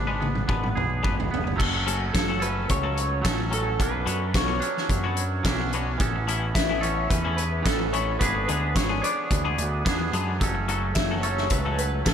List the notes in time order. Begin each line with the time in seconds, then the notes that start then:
Already playing: G#1 B3 D4
0.07 G#3 B3 D4 B4
0.20 B3, high tom
0.35 mid tom
0.48 G#1 G#3 B3 D4 B4, kick
0.63 mid tom
0.75 B1 G#4, mid tom
1.03 G#1 G#3 B3 D4 B4, kick, mid tom
1.18 muted clean electric guitar stroke, floor tom
1.31 F#1 B3, floor tom
1.44 muted clean electric guitar stroke, floor tom
1.56 F#1 F#3 A3 C#4 A4, kick
1.60 crash
1.73 muted clean electric guitar stroke
1.87 F#3 C#4 F#4 A4, closed hi-hat
2.13 F#1 A4, kick, snare, closed hi-hat
2.29 F#3 C#4 F#4 A4
2.40 A3 C#4 A4 B4, closed hi-hat
2.44 F#3
2.69 C#2 C#5, muted clean electric guitar stroke, kick, closed hi-hat
2.83 F#3 C#4 F#4 A4
2.97 closed hi-hat
3.22 A1 F#3 A3 C#4 A4, muted clean electric guitar stroke, kick, closed hi-hat
3.26 snare
3.38 muted clean electric guitar stroke
3.51 F#3 C#4 F#4 A4, closed hi-hat
3.80 B1 F#3 C#4 D4 B4, kick, closed hi-hat
3.91 muted clean electric guitar stroke
4.06 F#2 B3 D4 F#4 C#5, closed hi-hat
4.34 B1 C#5, kick, snare, closed hi-hat
4.48 B3 D4 F#4 C#5
4.60 F#3 C#4 D4, closed hi-hat
4.77 snare
4.89 F#2, muted clean electric guitar stroke, kick, closed hi-hat
5.04 B3 D4 F#4 C#5
5.17 closed hi-hat
5.43 B1 F#3 C#4 D4, muted clean electric guitar stroke, kick, snare, closed hi-hat
5.61 muted clean electric guitar stroke
5.73 B3 D4 F#4 C#5, closed hi-hat
5.98 A1 E3 B3 C#4 A4, kick, closed hi-hat
6.16 muted clean electric guitar stroke
6.27 A3 B3 C#4 E4, closed hi-hat
6.55 A1 E5, kick, snare, closed hi-hat
6.69 A3 B3 C#4 E4
6.81 E3 B3 C#4 A4 C#5, closed hi-hat
7.10 E2 B4, muted clean electric guitar stroke, kick, closed hi-hat
7.25 A3 B3 C#4 E4
7.37 B4, closed hi-hat
7.63 A1 E3 B3 C#4 A4, muted clean electric guitar stroke, kick, closed hi-hat
7.67 snare
7.79 muted clean electric guitar stroke
7.93 A3 B3 C#4 E4 C#5, closed hi-hat
8.19 G#1 B3 D4 G#4 B4, kick, closed hi-hat
8.35 muted clean electric guitar stroke
8.48 D2 G#3 B3 D4 G#4 B4, closed hi-hat
8.76 G#1 C#5, kick, snare, closed hi-hat
8.89 G#3 B3 D4 G#4
9.02 B3 D4 G#4 D5, closed hi-hat
9.31 D2, muted clean electric guitar stroke, kick, closed hi-hat
9.45 G#3 B3 D4 G#4
9.58 D2, closed hi-hat
9.85 B3 D4 G#4, muted clean electric guitar stroke, kick, snare, closed hi-hat
9.99 muted clean electric guitar stroke
10.13 F#2 G#3 B3 D4 G#4, closed hi-hat
10.40 F#1 F#3 A3 C#4 A4, kick, closed hi-hat
10.55 muted clean electric guitar stroke
10.68 F#3 C#4 F#4 A4, closed hi-hat
10.95 F#1 E5, kick, snare, closed hi-hat
11.11 F#3 C#4 F#4 A4
11.22 F#3 A3 C#4 A4 C#5, closed hi-hat
11.38 snare
11.50 C#2 B4, muted clean electric guitar stroke, kick, closed hi-hat
11.66 F#3 C#4 F#4 A4
11.78 B4, closed hi-hat
12.05 A1 F#3 A3 C#4 A4, muted clean electric guitar stroke, kick, snare, closed hi-hat